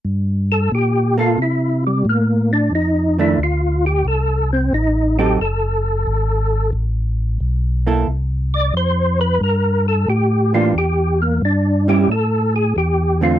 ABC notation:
X:1
M:4/4
L:1/8
Q:"Swing" 1/4=90
K:Cmix
V:1 name="Tonewheel organ"
z A G F E G, B, D | _E =E F G A C _E G | A4 z4 | z d c =B _B A G F |
G B, D G A _A G F |]
V:2 name="Hollow-body jazz guitar"
z3 [B,A] z4 | z [_E,A,D] z4 z [^F,C_EA] | z6 z [B,EA] | z6 z [E,B,DG] |
z3 [G,_DE] z3 [=D,A,CF] |]
V:3 name="Tonewheel organ" clef=bass
G,,2 B,,2 C,2 A,,2 | F,,2 D,,2 C,,2 A,,,2 | ^F,,,2 ^G,,,2 A,,,2 =B,,,2 | C,,2 F,,2 G,,2 A,,2 |
E,,2 G,,2 A,,2 E,,2 |]